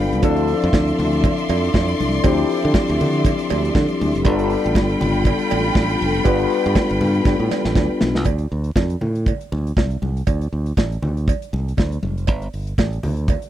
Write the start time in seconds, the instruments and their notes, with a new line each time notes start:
Already playing: string section F3 A4 G5 B5, tine electric piano G3 B3 D4 F4 A4 B4 D5
0.00 tine electric piano F5
0.12 fingered electric bass C2, closed hi-hat
0.21 fingered electric bass D2, tine electric piano F3 C4 D4 E4 A4, string section D5 E5 C6, kick, closed hi-hat, cowbell, muted conga
0.36 closed hi-hat
0.47 open hi-hat
0.62 fingered electric bass F2, closed hi-hat
0.73 fingered electric bass D2, kick, snare, cowbell, high conga
0.87 closed hi-hat
0.99 fingered electric bass D2, open hi-hat, low conga
1.13 closed hi-hat
1.24 kick, closed hi-hat, cowbell, muted conga, low conga
1.38 closed hi-hat
1.48 fingered electric bass F2, open hi-hat, cowbell, muted conga
1.64 closed hi-hat
1.74 fingered electric bass F2, kick, snare, cowbell, high conga
1.88 closed hi-hat
2.00 fingered electric bass C2, open hi-hat, high conga
2.14 closed hi-hat
2.24 fingered electric bass D2, tine electric piano F3 C4 D4 E4 G4, string section E5, kick, closed hi-hat, cowbell
2.38 closed hi-hat
2.49 open hi-hat
2.62 fingered electric bass D3, closed hi-hat
2.74 kick, snare, cowbell, high conga
2.88 fingered electric bass D2, closed hi-hat
3.00 fingered electric bass D3, open hi-hat, low conga
3.13 closed hi-hat
3.25 kick, closed hi-hat, cowbell, muted conga, low conga
3.39 closed hi-hat
3.49 fingered electric bass D2, open hi-hat, cowbell, muted conga
3.65 closed hi-hat
3.75 fingered electric bass D3, kick, snare, cowbell, high conga
3.88 closed hi-hat
4.01 fingered electric bass D2, open hi-hat, high conga
4.14 fingered electric bass F1, closed hi-hat
4.24 fingered electric bass G1, tine electric piano G3 B3 D4 F4 A4, string section F4 A4 G5 B5, kick, closed hi-hat, cowbell
4.39 closed hi-hat
4.50 open hi-hat
4.64 fingered electric bass A1, closed hi-hat
4.75 fingered electric bass G1, kick, snare, cowbell, high conga
4.89 closed hi-hat
5.01 fingered electric bass G1, open hi-hat, low conga
5.14 closed hi-hat
5.25 kick, closed hi-hat, cowbell, muted conga, low conga
5.39 closed hi-hat
5.50 fingered electric bass A1, open hi-hat, cowbell, muted conga
5.64 closed hi-hat
5.75 fingered electric bass A1, kick, snare, cowbell, high conga
5.89 closed hi-hat
6.01 fingered electric bass F1, open hi-hat, high conga
6.15 closed hi-hat
6.24 fingered electric bass G1, tine electric piano G3 B3 D4 F4 B4, kick, closed hi-hat, cowbell, muted conga
6.39 closed hi-hat
6.50 open hi-hat
6.64 fingered electric bass G2, closed hi-hat
6.75 kick, snare, cowbell, high conga
6.89 fingered electric bass G1, closed hi-hat
7.01 fingered electric bass G2, open hi-hat, low conga
7.14 closed hi-hat
7.25 fingered electric bass G2, kick, snare, cowbell, muted conga, low conga
7.40 fingered electric bass A2
7.51 snare, cowbell, muted conga
7.65 fingered electric bass A1, snare
7.75 fingered electric bass D2, kick, snare, cowbell, high conga
8.01 fingered electric bass B1, snare, high conga
8.15 fingered electric bass C2, snare
8.24 fingered electric bass D2, kick, closed hi-hat, cowbell, muted conga
8.38 closed hi-hat
8.52 fingered electric bass D2
8.64 closed hi-hat
8.76 fingered electric bass F2, kick, snare, cowbell, high conga
8.90 closed hi-hat
9.01 fingered electric bass A2, low conga
9.15 closed hi-hat
9.26 kick, closed hi-hat, cowbell, muted conga, low conga
9.41 closed hi-hat
9.52 fingered electric bass D2, muted conga
9.67 closed hi-hat
9.77 fingered electric bass C2, kick, snare, cowbell, high conga
9.91 closed hi-hat
10.02 fingered electric bass C2, high conga
10.17 closed hi-hat
10.27 fingered electric bass D2, kick, closed hi-hat, cowbell, muted conga
10.41 closed hi-hat
10.53 fingered electric bass D2
10.66 closed hi-hat
10.77 fingered electric bass A1, kick, snare, cowbell, high conga
10.92 closed hi-hat
11.02 fingered electric bass D2, low conga
11.17 closed hi-hat
11.28 kick, closed hi-hat, cowbell, muted conga
11.42 closed hi-hat
11.53 fingered electric bass C2, muted conga
11.68 closed hi-hat
11.77 fingered electric bass D2, kick, snare, cowbell, high conga
11.92 closed hi-hat
12.03 fingered electric bass F1, high conga
12.18 closed hi-hat
12.27 fingered electric bass G1, kick, closed hi-hat, cowbell, muted conga
12.42 closed hi-hat
12.53 fingered electric bass G1, open hi-hat
12.67 closed hi-hat
12.78 fingered electric bass A1, kick, snare, cowbell, high conga
12.93 closed hi-hat
13.03 fingered electric bass D2, open hi-hat, low conga
13.17 closed hi-hat
13.28 kick, closed hi-hat, cowbell, muted conga, low conga
13.42 closed hi-hat